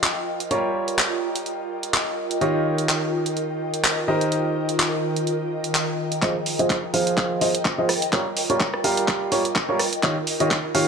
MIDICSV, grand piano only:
0, 0, Header, 1, 2, 480
1, 0, Start_track
1, 0, Tempo, 476190
1, 513, Time_signature, 4, 2, 24, 8
1, 10966, End_track
2, 0, Start_track
2, 0, Title_t, "Grand piano"
2, 0, Program_c, 0, 0
2, 0, Note_on_c, 0, 53, 69
2, 0, Note_on_c, 0, 65, 66
2, 0, Note_on_c, 0, 68, 64
2, 0, Note_on_c, 0, 72, 65
2, 0, Note_on_c, 0, 75, 78
2, 487, Note_off_c, 0, 53, 0
2, 487, Note_off_c, 0, 65, 0
2, 487, Note_off_c, 0, 68, 0
2, 487, Note_off_c, 0, 72, 0
2, 487, Note_off_c, 0, 75, 0
2, 513, Note_on_c, 0, 55, 70
2, 513, Note_on_c, 0, 65, 64
2, 513, Note_on_c, 0, 67, 65
2, 513, Note_on_c, 0, 70, 65
2, 513, Note_on_c, 0, 73, 79
2, 2407, Note_off_c, 0, 55, 0
2, 2407, Note_off_c, 0, 65, 0
2, 2407, Note_off_c, 0, 67, 0
2, 2407, Note_off_c, 0, 70, 0
2, 2407, Note_off_c, 0, 73, 0
2, 2432, Note_on_c, 0, 51, 72
2, 2432, Note_on_c, 0, 65, 65
2, 2432, Note_on_c, 0, 73, 67
2, 2432, Note_on_c, 0, 75, 78
2, 2433, Note_on_c, 0, 67, 65
2, 4087, Note_off_c, 0, 51, 0
2, 4087, Note_off_c, 0, 65, 0
2, 4087, Note_off_c, 0, 67, 0
2, 4087, Note_off_c, 0, 73, 0
2, 4087, Note_off_c, 0, 75, 0
2, 4112, Note_on_c, 0, 51, 73
2, 4113, Note_on_c, 0, 67, 69
2, 4113, Note_on_c, 0, 70, 67
2, 4113, Note_on_c, 0, 72, 69
2, 4113, Note_on_c, 0, 75, 82
2, 6247, Note_off_c, 0, 51, 0
2, 6247, Note_off_c, 0, 67, 0
2, 6247, Note_off_c, 0, 70, 0
2, 6247, Note_off_c, 0, 72, 0
2, 6247, Note_off_c, 0, 75, 0
2, 6273, Note_on_c, 0, 53, 77
2, 6273, Note_on_c, 0, 65, 69
2, 6273, Note_on_c, 0, 68, 72
2, 6273, Note_on_c, 0, 72, 71
2, 6273, Note_on_c, 0, 75, 85
2, 6380, Note_off_c, 0, 53, 0
2, 6380, Note_off_c, 0, 65, 0
2, 6380, Note_off_c, 0, 68, 0
2, 6380, Note_off_c, 0, 72, 0
2, 6380, Note_off_c, 0, 75, 0
2, 6646, Note_on_c, 0, 53, 80
2, 6646, Note_on_c, 0, 65, 70
2, 6646, Note_on_c, 0, 68, 74
2, 6646, Note_on_c, 0, 72, 72
2, 6646, Note_on_c, 0, 75, 86
2, 6792, Note_off_c, 0, 53, 0
2, 6792, Note_off_c, 0, 65, 0
2, 6792, Note_off_c, 0, 68, 0
2, 6792, Note_off_c, 0, 72, 0
2, 6792, Note_off_c, 0, 75, 0
2, 6993, Note_on_c, 0, 53, 84
2, 6993, Note_on_c, 0, 65, 78
2, 6993, Note_on_c, 0, 68, 79
2, 6993, Note_on_c, 0, 72, 76
2, 6993, Note_on_c, 0, 77, 92
2, 7447, Note_off_c, 0, 53, 0
2, 7447, Note_off_c, 0, 65, 0
2, 7447, Note_off_c, 0, 68, 0
2, 7447, Note_off_c, 0, 72, 0
2, 7447, Note_off_c, 0, 77, 0
2, 7473, Note_on_c, 0, 53, 72
2, 7473, Note_on_c, 0, 68, 64
2, 7473, Note_on_c, 0, 72, 64
2, 7473, Note_on_c, 0, 75, 77
2, 7474, Note_on_c, 0, 65, 62
2, 7580, Note_off_c, 0, 53, 0
2, 7580, Note_off_c, 0, 72, 0
2, 7581, Note_off_c, 0, 65, 0
2, 7581, Note_off_c, 0, 68, 0
2, 7581, Note_off_c, 0, 75, 0
2, 7846, Note_on_c, 0, 53, 76
2, 7846, Note_on_c, 0, 65, 68
2, 7846, Note_on_c, 0, 68, 70
2, 7846, Note_on_c, 0, 72, 67
2, 7846, Note_on_c, 0, 75, 83
2, 7932, Note_off_c, 0, 53, 0
2, 7932, Note_off_c, 0, 65, 0
2, 7932, Note_off_c, 0, 68, 0
2, 7932, Note_off_c, 0, 72, 0
2, 7932, Note_off_c, 0, 75, 0
2, 8193, Note_on_c, 0, 55, 80
2, 8193, Note_on_c, 0, 65, 73
2, 8193, Note_on_c, 0, 67, 70
2, 8193, Note_on_c, 0, 70, 74
2, 8193, Note_on_c, 0, 73, 87
2, 8300, Note_off_c, 0, 55, 0
2, 8300, Note_off_c, 0, 65, 0
2, 8300, Note_off_c, 0, 67, 0
2, 8300, Note_off_c, 0, 70, 0
2, 8300, Note_off_c, 0, 73, 0
2, 8565, Note_on_c, 0, 55, 79
2, 8565, Note_on_c, 0, 65, 73
2, 8566, Note_on_c, 0, 67, 73
2, 8566, Note_on_c, 0, 70, 72
2, 8566, Note_on_c, 0, 73, 90
2, 8711, Note_off_c, 0, 55, 0
2, 8711, Note_off_c, 0, 65, 0
2, 8712, Note_off_c, 0, 67, 0
2, 8712, Note_off_c, 0, 70, 0
2, 8712, Note_off_c, 0, 73, 0
2, 8912, Note_on_c, 0, 67, 78
2, 8912, Note_on_c, 0, 70, 79
2, 8913, Note_on_c, 0, 55, 83
2, 8913, Note_on_c, 0, 65, 78
2, 8913, Note_on_c, 0, 77, 93
2, 9367, Note_off_c, 0, 55, 0
2, 9367, Note_off_c, 0, 65, 0
2, 9367, Note_off_c, 0, 67, 0
2, 9367, Note_off_c, 0, 70, 0
2, 9367, Note_off_c, 0, 77, 0
2, 9392, Note_on_c, 0, 55, 72
2, 9392, Note_on_c, 0, 67, 65
2, 9393, Note_on_c, 0, 65, 64
2, 9393, Note_on_c, 0, 70, 64
2, 9393, Note_on_c, 0, 73, 82
2, 9500, Note_off_c, 0, 55, 0
2, 9500, Note_off_c, 0, 65, 0
2, 9500, Note_off_c, 0, 67, 0
2, 9500, Note_off_c, 0, 70, 0
2, 9500, Note_off_c, 0, 73, 0
2, 9765, Note_on_c, 0, 55, 77
2, 9765, Note_on_c, 0, 67, 70
2, 9765, Note_on_c, 0, 73, 85
2, 9766, Note_on_c, 0, 65, 70
2, 9766, Note_on_c, 0, 70, 67
2, 9852, Note_off_c, 0, 55, 0
2, 9852, Note_off_c, 0, 65, 0
2, 9852, Note_off_c, 0, 67, 0
2, 9852, Note_off_c, 0, 70, 0
2, 9852, Note_off_c, 0, 73, 0
2, 10112, Note_on_c, 0, 51, 82
2, 10112, Note_on_c, 0, 65, 73
2, 10112, Note_on_c, 0, 67, 72
2, 10112, Note_on_c, 0, 73, 72
2, 10113, Note_on_c, 0, 75, 91
2, 10220, Note_off_c, 0, 51, 0
2, 10220, Note_off_c, 0, 65, 0
2, 10220, Note_off_c, 0, 67, 0
2, 10220, Note_off_c, 0, 73, 0
2, 10220, Note_off_c, 0, 75, 0
2, 10486, Note_on_c, 0, 51, 83
2, 10486, Note_on_c, 0, 65, 75
2, 10486, Note_on_c, 0, 67, 75
2, 10486, Note_on_c, 0, 73, 72
2, 10486, Note_on_c, 0, 75, 89
2, 10632, Note_off_c, 0, 51, 0
2, 10632, Note_off_c, 0, 65, 0
2, 10632, Note_off_c, 0, 67, 0
2, 10632, Note_off_c, 0, 73, 0
2, 10632, Note_off_c, 0, 75, 0
2, 10833, Note_on_c, 0, 51, 82
2, 10833, Note_on_c, 0, 65, 79
2, 10833, Note_on_c, 0, 67, 77
2, 10833, Note_on_c, 0, 73, 80
2, 10833, Note_on_c, 0, 77, 96
2, 10966, Note_off_c, 0, 51, 0
2, 10966, Note_off_c, 0, 65, 0
2, 10966, Note_off_c, 0, 67, 0
2, 10966, Note_off_c, 0, 73, 0
2, 10966, Note_off_c, 0, 77, 0
2, 10966, End_track
0, 0, End_of_file